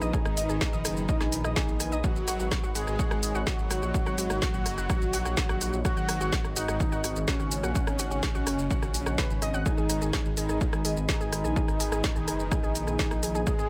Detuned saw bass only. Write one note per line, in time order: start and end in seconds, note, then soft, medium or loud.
0.02 0.12 A#1 medium
0.25 0.35 G#1 medium
0.37 0.47 G#1 loud
0.49 0.59 G#1 medium
0.73 0.83 A#1 medium
0.85 0.95 F#1 loud
0.97 1.07 F#1 medium
1.21 1.31 A#1 medium
1.33 1.43 A#1 loud
1.45 1.54 A#1 loud
1.68 1.78 A#1 medium
1.80 1.90 A#1 loud
1.92 2.02 A#1 loud
2.16 2.26 G#1 medium
2.28 2.38 G#1 loud
2.40 2.50 G#1 medium
2.64 2.73 G#1 medium
2.75 2.85 G#1 loud
2.87 2.97 G#1 medium
3.11 3.21 G#1 medium
3.23 3.33 G#1 loud
3.35 3.45 G#1 loud
3.59 3.69 G#1 medium
3.70 3.81 G#1 loud
3.82 3.92 A#1 medium
4.06 4.16 G#1 medium
4.18 4.28 G#1 loud
4.30 4.40 G#1 medium
4.54 4.64 A#1 medium
4.66 4.76 F#1 loud
4.78 4.88 F#1 medium
5.01 5.11 A#1 medium
5.13 5.23 A#1 loud
5.25 5.35 A#1 medium
5.49 5.59 A#1 medium
5.61 5.71 A#1 loud
5.73 5.83 A#1 medium
5.97 6.07 G#1 medium
6.09 6.19 G#1 loud
6.21 6.31 G#1 medium
6.44 6.54 G#1 medium
6.56 6.66 G#1 loud
6.68 6.78 G#1 medium
6.92 7.02 G#1 medium
7.04 7.14 G#1 loud
7.16 7.26 G#1 medium
7.40 7.50 G#1 medium
7.52 7.62 G#1 loud
7.64 7.73 A#1 loud
7.87 7.97 G#1 medium
7.99 8.09 G#1 loud
8.11 8.21 G#1 medium
8.35 8.45 A#1 medium
8.47 8.57 F#1 loud
8.59 8.69 F#1 medium
8.83 8.93 A#1 medium
8.94 9.04 A#1 loud
9.07 9.16 A#1 loud
9.30 9.40 G#1 medium
9.42 9.52 G#1 loud
9.54 9.64 G#1 loud
9.78 9.88 G#1 medium
9.90 10.00 G#1 loud
10.02 10.12 G#1 medium
10.26 10.35 G#1 medium
10.37 10.47 G#1 loud
10.49 10.59 G#1 medium
10.73 10.83 G#1 medium
10.85 10.95 G#1 loud
10.97 11.07 G#1 medium
11.21 11.31 G#1 medium
11.32 11.43 G#1 loud
11.44 11.54 A#1 loud
11.68 11.78 G#1 medium
11.80 11.90 G#1 loud
11.92 12.02 G#1 medium
12.16 12.26 A#1 medium
12.28 12.38 F#1 loud
12.40 12.50 F#1 medium
12.63 12.73 A#1 medium
12.75 12.85 A#1 loud
12.87 12.97 A#1 medium
13.11 13.21 A#1 medium
13.23 13.33 A#1 loud
13.35 13.45 A#1 loud
13.59 13.69 G#1 medium